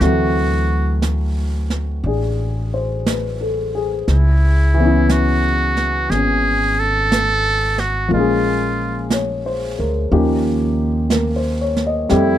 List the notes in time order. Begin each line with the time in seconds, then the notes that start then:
0.00 D2 E3 F#3 A3 C4 F#4, brush sweep, snare
1.02 brush sweep, snare, hi-hat pedal
1.70 snare
2.04 A1 D4 G#4, brush sweep
2.74 C5
3.06 B4, brush sweep, snare, hi-hat pedal
3.41 A4
3.75 G#4
4.08 C#2 E4, brush sweep, snare
4.74 E3
4.80 B3 C#4
4.86 E4
5.09 F#4, brush sweep, snare, hi-hat pedal
5.77 snare
6.10 G#1 B3 G#4, brush sweep, snare
6.14 C#4
6.79 A4
7.12 brush sweep, snare, hi-hat pedal
7.78 F#4, snare
8.08 A#1 F3 A#3, brush sweep
8.13 G#3 C#4 F4
8.19 G#4
9.10 C#5, brush sweep, snare, hi-hat pedal
9.46 C5
9.79 D2 A#4
10.11 D#2 F3 A#3 C#4 D#4 G4, brush sweep
11.10 A#4, brush sweep, snare, hi-hat pedal
11.36 C5
11.61 C#5
11.76 snare
11.87 D#5
12.09 F2 G3 A3 C4 E4 G4 E5, brush sweep, snare